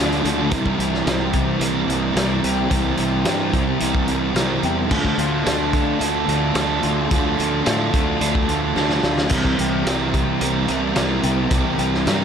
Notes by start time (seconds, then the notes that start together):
Already playing: D3 F3 A3 D4 F4 A4
0.00 D2 A3 D4
0.12 closed hi-hat
0.22 D2 D3 A3 D4 F4 A4, closed hi-hat
0.27 D4
0.36 D4 F4 A4
0.41 A3
0.49 C2 C3 E3 G3 C4 E4 A#4, kick, closed hi-hat
0.53 G3 C4
0.66 kick
0.78 C2 G3 C4 G4, closed hi-hat
0.94 snare
1.05 C2 C3 G3 C4 E4 A#4, snare, closed hi-hat
1.10 C4
1.33 C3 E3, kick, closed hi-hat
1.59 C2 C3 E3 G3 A#3 C4 E4 A#4, closed hi-hat
1.88 C2 E3 G3 C4, closed hi-hat
2.13 C2 C3 G3 A#3 C4 E4 A#4, snare, closed hi-hat
2.18 C4
2.42 C2 G3 C4 G4, closed hi-hat
2.69 C2 C3 E3 G3 C4 E4 A#4, kick, closed hi-hat
2.74 C4
2.97 C2 G3 C4 G4, closed hi-hat
3.24 G2 C3 G3 C4 E4 A#4, snare, closed hi-hat
3.29 C4
3.53 C2 E3, kick, closed hi-hat
3.80 C2 C3 E3 G3 A#3 C4 E4 A#4, closed hi-hat
3.95 kick
4.08 E3 G3 C4, closed hi-hat
4.35 C2 C3 G3 A#3 C4 E4 A#4, snare, closed hi-hat
4.39 C4
4.63 E2 C4 G4, closed hi-hat
4.67 G3
4.89 D2 D3 F3 A3 D4 F4 A4, kick, crash
4.94 D4
5.05 kick
5.18 D2 D4 F4, closed hi-hat
5.22 A3
5.44 D2 D3 A3 D4 F4 A4, snare, closed hi-hat
5.49 D4
5.73 D3 F3, kick, closed hi-hat
5.99 D2 D3 A3 D4 F4 A4, closed hi-hat
6.28 D2 F3 D4, closed hi-hat
6.32 A3
6.54 D2 D3 A3 D4 F4 A4, snare, closed hi-hat
6.59 D4
6.83 D2 D4 F4, closed hi-hat
6.87 A3
7.10 D2 D3 F3 A3 D4 F4 A4, kick, closed hi-hat
7.37 D2 A3 D4 F4, closed hi-hat
7.65 A2 D3 A3 D4 F4 A4, snare, closed hi-hat
7.69 D4
7.93 D2 F3, kick, closed hi-hat
8.21 D2 D3 A3 D4 F4 A4, closed hi-hat
8.35 kick
8.47 F3 D4, closed hi-hat
8.52 A3
8.76 D2 D3 A3 D4 F4 A4, snare
8.89 snare
9.02 D2 A3 D4 F4, snare
9.18 snare
9.29 C2 C3 E3 G3 C4 E4 A#4, kick, closed hi-hat, crash
9.45 kick
9.58 C2 G3 C4 G4, closed hi-hat
9.85 C2 C3 G3 C4 E4 A#4, snare, closed hi-hat
9.89 C4
10.14 C3 E3, kick, closed hi-hat
10.40 C2 C3 E3 G3 A#3 C4 E4 A#4, closed hi-hat
10.68 C2 E3 G3 C4, closed hi-hat
10.95 C2 C3 G3 A#3 C4 E4 A#4, snare, closed hi-hat
11.23 C2 G3 C4 G4, closed hi-hat
11.51 C2 C3 E3 G3 C4 E4 A#4, kick, closed hi-hat
11.78 C2 G3 C4 G4, closed hi-hat
11.94 snare
12.05 G2 C3 G3 C4 E4 A#4, snare, closed hi-hat
12.10 C4